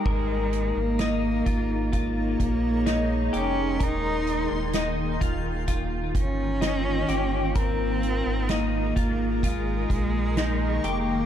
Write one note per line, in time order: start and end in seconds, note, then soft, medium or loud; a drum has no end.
0.00 0.80 G#3 medium
0.05 0.72 G#1 loud
0.05 3.77 G#3 medium
0.05 11.26 A#3 medium
0.05 3.77 D#4 medium
0.05 0.99 A#4 medium
0.05 1.91 A#4 medium
0.05 kick loud
0.05 crash medium
0.53 3.19 C#5 medium
0.53 closed hi-hat soft
0.76 1.43 G#1 loud
0.76 1.94 A#3 medium
0.99 1.46 D#4 medium
0.99 snare medium
0.99 closed hi-hat medium
1.46 2.36 G#1 medium
1.46 1.91 F4 medium
1.46 kick medium
1.46 closed hi-hat soft
1.92 3.38 A#3 medium
1.92 2.86 F4 medium
1.92 4.24 G#4 medium
1.92 3.78 A#4 medium
1.92 kick medium
1.92 closed hi-hat medium
2.40 3.30 A#1 medium
2.40 kick medium
2.40 closed hi-hat soft
2.86 3.33 D#4 medium
2.86 4.24 C6 medium
2.86 snare medium
2.86 closed hi-hat medium
3.33 3.79 F1 medium
3.33 3.85 C#4 medium
3.33 3.79 G4 medium
3.33 closed hi-hat soft
3.80 4.47 D#1 loud
3.80 11.26 D#3 medium
3.80 4.76 D#4 medium
3.80 4.74 A#4 medium
3.80 5.67 G5 medium
3.80 kick medium
3.80 closed hi-hat medium
4.27 closed hi-hat soft
4.51 5.18 D#1 medium
4.73 5.21 D#4 medium
4.73 snare medium
4.73 closed hi-hat medium
5.21 6.16 D#1 medium
5.21 5.67 F4 medium
5.21 kick medium
5.21 closed hi-hat medium
5.68 6.61 F4 medium
5.68 7.54 F4 medium
5.68 kick medium
5.68 closed hi-hat medium
6.15 7.05 G1 medium
6.15 7.53 C#4 medium
6.15 kick medium
6.15 closed hi-hat medium
6.61 7.08 D#4 medium
6.61 snare medium
6.61 closed hi-hat medium
7.08 7.53 G1 medium
7.08 7.55 G4 medium
7.08 closed hi-hat soft
7.55 8.22 G#1 loud
7.55 11.26 G#3 medium
7.55 8.53 C4 medium
7.55 8.49 A#4 medium
7.55 11.26 A#4 medium
7.55 kick loud
7.55 closed hi-hat medium
8.03 closed hi-hat soft
8.26 8.93 G#1 loud
8.49 9.46 A#3 medium
8.49 8.96 D#4 medium
8.49 snare medium
8.49 closed hi-hat medium
8.96 9.86 G#1 medium
8.96 9.43 F4 medium
8.96 11.26 G#4 soft
8.96 kick medium
8.96 closed hi-hat medium
9.25 11.26 C6 medium
9.43 10.88 G#3 medium
9.43 10.37 F4 medium
9.43 kick medium
9.43 closed hi-hat medium
9.54 11.26 C#6 medium
9.90 10.80 A#1 medium
9.90 kick medium
9.90 closed hi-hat soft
10.37 10.84 D#4 medium
10.37 snare medium
10.37 closed hi-hat medium
10.84 11.26 F1 medium
10.84 11.26 A#3 loud
10.84 11.26 G4 medium
10.84 closed hi-hat soft